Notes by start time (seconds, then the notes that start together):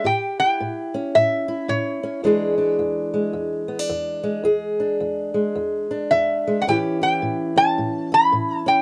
0.04 A2 G4 G5
0.40 E4 G5
0.60 A2
0.94 C#4
1.15 A2 E5
1.48 E4
1.68 A2 C#5
2.03 C#4
2.23 E2 E3 G#3 D4 G#4
2.58 D4
2.79 E2
3.14 G#3
3.33 E2
3.68 B3
3.79 D4
3.89 E2
4.23 G#3
4.44 E2 G#4
4.80 D4
5.00 E2
5.34 G#3
5.55 E2
5.91 D4
6.11 E2 E5
6.47 G#3
6.62 F#5
6.67 A2 E3 C#4 E4 G4 G5
7.01 E4 G5
7.22 A2
7.56 C#4 A5
7.78 A2
8.12 E4 B5
8.32 A2
8.58 A5
8.66 C#4 G5